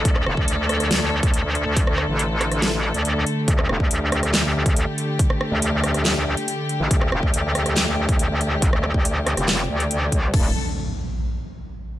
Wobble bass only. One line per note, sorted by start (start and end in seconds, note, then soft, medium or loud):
0.05 0.25 D2 medium
0.26 0.36 E1 medium
0.37 1.21 D2 loud
1.23 1.43 D2 medium
1.44 1.64 D2 medium
1.66 2.07 D2 loud
2.09 2.93 A1 loud
2.94 3.25 D2 loud
3.48 3.68 D2 loud
3.69 3.78 E1 loud
3.80 4.64 D2 loud
4.66 4.86 D2 loud
5.52 6.36 D2 loud
6.80 6.89 A1 loud
6.91 7.10 D2 loud
7.12 7.21 E1 loud
7.23 8.07 D2 loud
8.09 8.28 D2 medium
8.30 8.71 D2 loud
8.73 8.93 D2 loud
8.94 9.36 D2 loud
9.37 9.68 F1 medium
9.69 10.13 D2 loud
10.13 10.32 C#2 loud
10.34 10.54 D1 loud